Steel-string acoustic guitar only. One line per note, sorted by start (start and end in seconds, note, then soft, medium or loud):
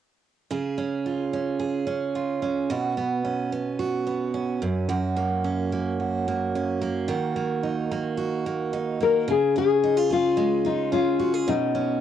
0.51 2.70 C#3 medium
0.51 1.58 G#4 medium
0.78 1.33 C#4 soft
1.06 2.14 F4 soft
1.33 1.86 C#4 soft
1.59 2.69 G#4 soft
1.87 2.42 C#4 soft
2.15 2.75 F4 soft
2.42 2.97 C#4 soft
2.70 4.62 B2 medium
2.70 3.79 F#4 medium
2.97 3.51 B3 soft
3.25 4.34 C#4 soft
3.52 4.05 B3 soft
3.79 4.89 F#4 medium
4.07 4.67 B3 soft
4.34 5.44 C#4 soft
4.62 4.88 F#2 medium
4.89 7.08 F#2 medium
4.89 5.99 F#4 medium
5.17 5.72 A#3 soft
5.44 6.54 C#4 soft
5.72 6.27 A#3 medium
6.00 7.08 F#4 medium
6.28 6.81 A#3 medium
6.55 7.15 C#4 medium
6.81 7.36 A#3 medium
7.08 9.27 D#3 medium
7.08 8.16 F#4 medium
7.36 7.90 A#3 soft
7.63 8.72 D#4 soft
7.91 8.45 A#3 medium
8.17 9.33 F#4 medium
8.46 8.99 A#3 medium
8.73 9.33 D#4 medium
9.00 9.33 A#3 soft
9.28 11.47 C#3 medium
9.56 10.92 C#4 soft
9.84 9.97 D#4 soft
9.97 10.64 F4 soft
10.10 11.19 G#4 medium
10.37 11.52 G#3 medium
10.65 11.52 F4 soft
10.92 11.75 C#4 medium
11.20 11.34 F#4 medium
11.34 11.53 G#4 soft
11.48 12.01 B2 medium
11.75 12.01 C#4 soft